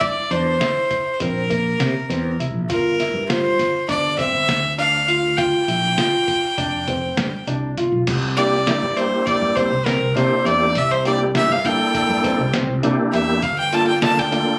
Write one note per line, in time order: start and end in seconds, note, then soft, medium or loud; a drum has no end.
0.00 0.16 G2 medium
0.00 0.21 E4 medium
0.00 0.33 D5 medium
0.00 kick loud
0.00 closed hi-hat medium
0.31 0.57 E2 medium
0.31 0.51 D4 medium
0.31 1.14 C5 medium
0.31 closed hi-hat soft
0.60 1.01 E4 medium
0.60 snare medium
0.60 closed hi-hat medium
0.91 kick medium
0.91 closed hi-hat soft
1.14 1.23 C5 soft
1.20 1.73 A#1 medium
1.20 1.41 C4 medium
1.20 2.40 A#4 medium
1.20 kick medium
1.20 closed hi-hat medium
1.50 1.91 A#3 medium
1.50 kick medium
1.50 closed hi-hat medium
1.80 1.93 C3 medium
1.80 snare medium
1.80 closed hi-hat medium
2.10 2.36 E2 medium
2.10 2.30 C4 medium
2.10 snare soft
2.10 closed hi-hat medium
2.39 2.53 C2 medium
2.39 2.60 E4 medium
2.39 closed hi-hat medium
2.54 2.67 A#1 medium
2.69 3.09 G1 medium
2.69 2.90 F4 medium
2.69 3.26 A#4 medium
2.69 kick loud
2.69 closed hi-hat medium
3.00 3.20 E4 medium
3.00 snare soft
3.00 closed hi-hat soft
3.14 3.53 G2 medium
3.29 3.70 F4 medium
3.29 3.85 C5 medium
3.29 snare medium
3.29 closed hi-hat medium
3.59 3.72 G1 medium
3.59 snare soft
3.59 closed hi-hat medium
3.88 4.28 G1 medium
3.88 4.09 D4 medium
3.88 4.17 D5 medium
3.88 kick medium
3.88 closed hi-hat medium
4.18 4.59 C4 medium
4.18 4.75 E5 medium
4.18 kick medium
4.18 closed hi-hat medium
4.33 4.47 G1 medium
4.48 5.53 D2 medium
4.48 snare medium
4.48 closed hi-hat medium
4.78 4.99 D4 medium
4.78 5.39 F5 medium
4.78 closed hi-hat medium
5.08 5.28 F4 medium
5.08 closed hi-hat soft
5.37 5.58 F4 medium
5.37 7.47 G5 medium
5.37 kick medium
5.37 closed hi-hat medium
5.68 5.94 A#1 medium
5.68 5.88 E4 medium
5.68 closed hi-hat soft
5.98 6.38 F4 medium
5.98 snare medium
5.98 closed hi-hat medium
6.28 kick medium
6.28 closed hi-hat medium
6.58 7.10 F1 medium
6.58 6.78 D4 medium
6.58 kick medium
6.58 closed hi-hat medium
6.88 7.28 C4 medium
6.88 kick medium
6.88 closed hi-hat medium
7.17 7.31 G2 medium
7.17 snare loud
7.17 closed hi-hat medium
7.47 7.73 C2 medium
7.47 7.68 D4 medium
7.47 closed hi-hat medium
7.77 7.90 G1 medium
7.77 7.98 F4 medium
7.77 closed hi-hat medium
7.92 8.05 B1 medium
8.07 8.72 C2 medium
8.07 kick loud
8.07 closed hi-hat medium
8.07 crash medium
8.37 8.56 A#3 medium
8.37 8.56 D4 medium
8.37 8.57 E4 medium
8.37 8.57 G4 medium
8.37 8.58 G4 medium
8.37 8.98 D5 medium
8.37 closed hi-hat medium
8.66 8.86 A#3 medium
8.66 8.86 D4 medium
8.66 8.86 E4 medium
8.66 8.87 E4 medium
8.66 8.86 G4 medium
8.66 snare medium
8.66 closed hi-hat medium
8.82 9.08 G2 medium
8.96 9.73 A#3 medium
8.96 9.73 D4 medium
8.96 9.73 E4 medium
8.96 9.37 E4 medium
8.96 9.73 G4 medium
8.96 9.28 C5 medium
8.96 closed hi-hat medium
9.26 9.57 D5 medium
9.26 kick medium
9.26 closed hi-hat medium
9.41 9.67 G2 medium
9.56 9.77 C4 medium
9.56 9.87 C5 medium
9.56 kick medium
9.56 closed hi-hat medium
9.72 9.97 C2 medium
9.86 10.06 C4 medium
9.86 10.16 A#4 medium
9.86 snare medium
9.86 closed hi-hat medium
10.01 10.14 C2 medium
10.15 10.29 C3 medium
10.15 10.73 A#3 medium
10.15 10.36 D4 medium
10.15 10.73 D4 medium
10.15 10.73 E4 medium
10.15 10.74 G4 medium
10.15 10.47 C5 medium
10.15 snare soft
10.15 closed hi-hat medium
10.45 10.71 E2 medium
10.45 10.66 E4 medium
10.45 10.80 D5 medium
10.45 closed hi-hat medium
10.75 11.41 C2 medium
10.75 10.93 E5 medium
10.75 kick loud
10.75 closed hi-hat medium
10.91 11.06 C5 medium
11.05 11.24 A#3 medium
11.05 11.25 D4 medium
11.05 11.25 E4 medium
11.05 11.25 G4 medium
11.05 11.20 D5 medium
11.05 closed hi-hat medium
11.35 11.54 A#3 medium
11.35 11.55 D4 medium
11.35 11.55 E4 medium
11.35 11.55 G4 medium
11.35 11.54 E5 loud
11.35 snare loud
11.35 closed hi-hat medium
11.49 11.75 G2 medium
11.49 11.67 F5 medium
11.65 12.41 A#3 medium
11.65 12.41 D4 medium
11.65 12.05 E4 medium
11.65 12.42 E4 medium
11.65 12.42 A4 medium
11.65 12.55 G5 medium
11.65 kick medium
11.65 closed hi-hat medium
11.95 kick loud
11.95 closed hi-hat medium
12.09 12.35 G2 medium
12.24 12.44 C4 medium
12.24 kick medium
12.24 snare soft
12.24 closed hi-hat medium
12.39 12.65 C2 medium
12.54 12.74 C4 medium
12.54 snare medium
12.54 closed hi-hat medium
12.68 12.82 C2 medium
12.83 12.96 C3 medium
12.83 13.41 A#3 medium
12.83 13.41 D4 medium
12.83 13.04 D4 medium
12.83 13.41 E4 medium
12.83 13.41 G4 loud
12.83 closed hi-hat medium
13.13 13.39 E2 medium
13.13 13.33 E4 medium
13.13 13.45 E5 medium
13.13 closed hi-hat medium
13.42 14.08 G1 loud
13.42 13.58 F5 medium
13.42 kick loud
13.42 closed hi-hat medium
13.59 13.76 G5 medium
13.72 13.92 A#3 medium
13.72 13.92 D4 medium
13.72 13.92 F4 medium
13.72 13.93 F4 medium
13.72 13.92 A4 medium
13.72 13.87 A5 medium
13.72 closed hi-hat medium
13.88 14.02 G5 medium
14.02 14.21 A#3 medium
14.02 14.23 D4 medium
14.02 14.22 D4 medium
14.02 14.22 F4 medium
14.02 14.22 A4 medium
14.02 14.21 A5 loud
14.02 snare loud
14.02 closed hi-hat medium
14.17 14.43 D2 medium
14.17 14.59 G5 medium
14.31 14.59 A#3 medium
14.31 14.59 D4 medium
14.31 14.59 F4 medium
14.31 14.59 A4 medium
14.31 closed hi-hat medium